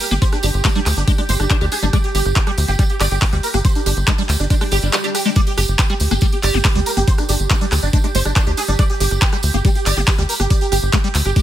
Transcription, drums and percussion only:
0.00 open hi-hat
0.11 cross-stick, closed hi-hat, tambourine
0.22 kick, closed hi-hat, tambourine
0.32 cross-stick, closed hi-hat, tambourine
0.43 open hi-hat, tambourine
0.54 closed hi-hat, tambourine
0.65 kick, cross-stick, clap, closed hi-hat, tambourine
0.75 closed hi-hat, tambourine
0.86 cross-stick, clap, open hi-hat, tambourine
0.96 closed hi-hat, tambourine
1.07 kick, closed hi-hat, tambourine
1.18 cross-stick, closed hi-hat, tambourine
1.29 open hi-hat, tambourine
1.40 cross-stick, closed hi-hat, tambourine
1.50 kick, clap, closed hi-hat, tambourine
1.61 closed hi-hat, tambourine
1.72 cross-stick, open hi-hat, tambourine
1.82 closed hi-hat, tambourine
1.93 kick, cross-stick, closed hi-hat, tambourine
2.04 closed hi-hat, tambourine
2.15 open hi-hat, tambourine
2.25 cross-stick, closed hi-hat, tambourine
2.36 kick, clap, closed hi-hat
2.47 cross-stick, closed hi-hat, tambourine
2.58 open hi-hat, tambourine
2.68 closed hi-hat, tambourine
2.79 kick, cross-stick, closed hi-hat, tambourine
2.89 closed hi-hat, tambourine
3.00 cross-stick, clap, open hi-hat, tambourine
3.11 closed hi-hat, tambourine
3.22 kick, clap, open hi-hat, tambourine
3.32 cross-stick, closed hi-hat, tambourine
3.43 open hi-hat, tambourine
3.53 cross-stick, closed hi-hat, tambourine
3.65 kick, closed hi-hat, tambourine
3.75 closed hi-hat, tambourine
3.86 cross-stick, open hi-hat, tambourine
3.97 closed hi-hat, tambourine
4.07 kick, cross-stick, clap, closed hi-hat, tambourine
4.18 closed hi-hat, tambourine
4.29 clap, open hi-hat, tambourine
4.40 cross-stick, closed hi-hat, tambourine
4.50 kick, closed hi-hat, tambourine
4.61 cross-stick, open hi-hat, tambourine
4.71 open hi-hat, tambourine
4.82 closed hi-hat, tambourine
4.93 cross-stick, clap, closed hi-hat, tambourine
5.04 closed hi-hat, tambourine
5.15 cross-stick, open hi-hat, tambourine
5.25 closed hi-hat, tambourine
5.36 kick, cross-stick, closed hi-hat, tambourine
5.47 closed hi-hat, tambourine
5.58 cross-stick, open hi-hat, tambourine
5.68 closed hi-hat, tambourine
5.79 kick, clap, closed hi-hat, tambourine
5.90 cross-stick, closed hi-hat, tambourine
6.00 open hi-hat, tambourine
6.11 cross-stick, closed hi-hat, tambourine
6.21 kick, closed hi-hat, tambourine
6.32 closed hi-hat, tambourine
6.43 cross-stick, clap, open hi-hat, tambourine
6.54 closed hi-hat, tambourine
6.64 kick, cross-stick, clap, open hi-hat, tambourine
6.75 closed hi-hat, tambourine
6.86 open hi-hat, tambourine
6.97 cross-stick, closed hi-hat, tambourine
7.07 kick, closed hi-hat, tambourine
7.18 cross-stick, closed hi-hat, tambourine
7.29 open hi-hat, tambourine
7.40 closed hi-hat, tambourine
7.50 kick, cross-stick, clap, closed hi-hat, tambourine
7.61 closed hi-hat, tambourine
7.72 cross-stick, clap, open hi-hat, tambourine
7.83 closed hi-hat, tambourine
7.93 kick, closed hi-hat, tambourine
8.04 cross-stick, closed hi-hat, tambourine
8.15 open hi-hat, tambourine
8.25 cross-stick, closed hi-hat, tambourine
8.36 kick, clap, closed hi-hat, tambourine
8.46 closed hi-hat, tambourine
8.57 cross-stick, open hi-hat, tambourine
8.68 closed hi-hat, tambourine
8.79 kick, cross-stick, closed hi-hat, tambourine
8.90 closed hi-hat, tambourine
9.00 open hi-hat, tambourine
9.11 cross-stick, closed hi-hat, tambourine
9.21 kick, clap, closed hi-hat, tambourine
9.33 cross-stick, closed hi-hat, tambourine
9.43 open hi-hat, tambourine
9.54 closed hi-hat, tambourine
9.65 kick, cross-stick, closed hi-hat, tambourine
9.75 closed hi-hat, tambourine
9.86 cross-stick, clap, open hi-hat, tambourine
9.97 closed hi-hat, tambourine
10.07 kick, clap, open hi-hat, tambourine
10.18 cross-stick, closed hi-hat, tambourine
10.29 open hi-hat, tambourine
10.39 cross-stick, closed hi-hat, tambourine
10.50 kick, closed hi-hat, tambourine
10.61 closed hi-hat, tambourine
10.72 cross-stick, open hi-hat, tambourine
10.83 closed hi-hat, tambourine
10.93 kick, cross-stick, clap, closed hi-hat, tambourine
11.04 closed hi-hat, tambourine
11.15 clap, open hi-hat, tambourine
11.25 cross-stick, closed hi-hat, tambourine
11.36 kick, closed hi-hat, tambourine

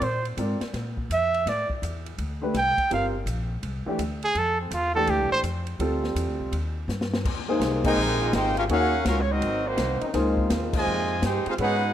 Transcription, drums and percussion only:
0.02 ride
0.25 ride
0.37 hi-hat pedal, ride
0.61 snare, ride
0.74 snare, ride
0.97 kick
1.11 hi-hat pedal, ride
1.34 ride
1.47 snare, ride
1.70 kick
1.83 hi-hat pedal, ride
2.06 ride
2.18 ride
2.54 snare, hi-hat pedal, ride
2.78 kick, ride
2.91 ride
3.27 hi-hat pedal, ride
3.63 ride
3.99 hi-hat pedal, ride
4.23 ride
4.35 ride
4.71 hi-hat pedal, ride
5.07 ride
5.44 hi-hat pedal, ride
5.67 ride
5.80 ride
6.04 snare
6.16 hi-hat pedal, ride
6.53 ride
6.89 snare, hi-hat pedal
7.01 snare
7.13 snare
7.25 kick, crash
7.61 snare, hi-hat pedal, ride
7.84 kick, crash
8.33 snare, hi-hat pedal, ride
8.57 ride
8.69 ride
9.05 snare, hi-hat pedal, ride
9.42 ride
9.77 snare, hi-hat pedal, ride
10.01 ride
10.14 snare, ride
10.37 kick
10.50 snare, hi-hat pedal, ride
10.73 kick, crash
11.22 snare, hi-hat pedal, ride
11.46 ride
11.58 ride

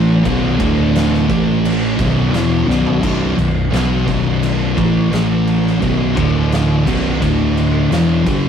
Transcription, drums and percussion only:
0.25 kick, crash
0.60 kick, crash
0.95 snare, crash
1.14 snare
1.30 kick, crash
1.65 crash
1.99 kick, crash
2.34 snare, crash
2.70 snare
2.87 floor tom
3.03 kick, crash
3.38 crash
3.73 snare, crash
4.08 kick, crash
4.43 crash
4.78 kick, crash
5.13 snare, crash
5.47 crash
5.67 snare
5.82 kick, crash
6.17 kick, crash
6.52 snare, crash
6.87 kick, crash
7.22 kick, crash
7.57 crash
7.92 snare, crash
8.27 kick, crash

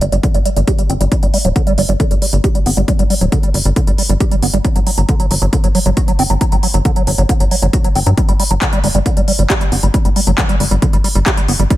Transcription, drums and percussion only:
0.01 closed hi-hat
0.12 closed hi-hat
0.23 kick, closed hi-hat
0.34 closed hi-hat
0.45 closed hi-hat
0.56 closed hi-hat
0.68 kick, closed hi-hat
0.79 closed hi-hat
0.90 closed hi-hat
1.01 closed hi-hat
1.12 kick, closed hi-hat
1.23 closed hi-hat
1.34 open hi-hat
1.45 closed hi-hat
1.56 kick, closed hi-hat
1.67 closed hi-hat
1.78 open hi-hat
1.89 closed hi-hat
2.00 kick, closed hi-hat
2.11 closed hi-hat
2.22 open hi-hat
2.33 closed hi-hat
2.44 kick, closed hi-hat
2.55 closed hi-hat
2.66 open hi-hat
2.77 closed hi-hat
2.88 kick, closed hi-hat
2.99 closed hi-hat
3.10 open hi-hat
3.21 closed hi-hat
3.32 kick, closed hi-hat
3.43 closed hi-hat
3.54 open hi-hat
3.65 closed hi-hat
3.76 kick, closed hi-hat
3.87 closed hi-hat
3.98 open hi-hat
4.09 closed hi-hat
4.20 kick, closed hi-hat
4.31 closed hi-hat
4.43 open hi-hat
4.54 closed hi-hat
4.65 kick, closed hi-hat
4.76 closed hi-hat
4.87 open hi-hat
4.98 closed hi-hat
5.09 kick, closed hi-hat
5.20 closed hi-hat
5.31 open hi-hat
5.42 closed hi-hat
5.53 kick, closed hi-hat
5.64 closed hi-hat
5.75 open hi-hat
5.86 closed hi-hat
5.97 kick, closed hi-hat
6.08 closed hi-hat
6.19 open hi-hat
6.30 closed hi-hat
6.41 kick, closed hi-hat
6.52 closed hi-hat
6.63 open hi-hat
6.74 closed hi-hat
6.85 kick, closed hi-hat
6.96 closed hi-hat
7.07 open hi-hat
7.18 closed hi-hat
7.29 kick, closed hi-hat
7.40 closed hi-hat
7.51 open hi-hat
7.62 closed hi-hat
7.73 kick, closed hi-hat
7.84 closed hi-hat
7.95 open hi-hat
8.06 closed hi-hat
8.18 kick, closed hi-hat
8.29 closed hi-hat
8.40 open hi-hat
8.51 closed hi-hat
8.62 kick, clap, closed hi-hat
8.73 closed hi-hat
8.84 open hi-hat
8.95 closed hi-hat
9.06 kick, closed hi-hat
9.17 closed hi-hat
9.28 open hi-hat
9.39 closed hi-hat
9.50 kick, clap, closed hi-hat
9.61 closed hi-hat
9.72 open hi-hat
9.83 closed hi-hat
9.94 kick, closed hi-hat
10.05 closed hi-hat
10.16 open hi-hat
10.27 closed hi-hat
10.38 kick, clap, closed hi-hat
10.49 closed hi-hat
10.60 open hi-hat
10.71 closed hi-hat
10.82 kick, closed hi-hat
10.93 closed hi-hat
11.04 open hi-hat
11.15 closed hi-hat
11.26 kick, clap, closed hi-hat
11.37 closed hi-hat
11.48 open hi-hat
11.59 closed hi-hat
11.70 kick, closed hi-hat

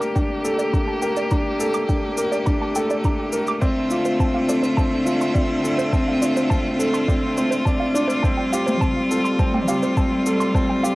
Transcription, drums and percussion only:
0.02 shaker
0.16 kick, shaker
0.45 shaker
0.59 shaker
0.74 kick, shaker
1.02 shaker
1.17 shaker
1.31 kick, shaker
1.60 shaker
1.74 shaker
1.89 kick, shaker
2.17 shaker
2.32 shaker
2.46 kick, shaker
2.75 shaker
2.90 shaker
3.04 kick, shaker
3.32 shaker
3.47 shaker
3.62 kick, shaker
3.91 shaker
4.05 shaker
4.20 kick, shaker
4.49 shaker
4.64 shaker
4.78 kick, shaker
5.07 shaker
5.21 shaker
5.35 kick, shaker
5.65 shaker
5.79 shaker
5.93 kick, shaker
6.22 shaker
6.37 shaker
6.51 kick, shaker
6.80 shaker
6.94 shaker
7.08 kick, shaker
7.37 shaker
7.52 shaker
7.66 kick, shaker
7.95 shaker
8.10 shaker
8.24 kick, shaker
8.53 shaker
8.68 mid tom, shaker
8.81 kick, shaker
9.11 shaker
9.25 shaker
9.39 kick, shaker
9.54 mid tom
9.68 shaker
9.83 shaker
9.97 kick, shaker
10.26 shaker
10.41 shaker
10.55 kick, shaker
10.85 shaker

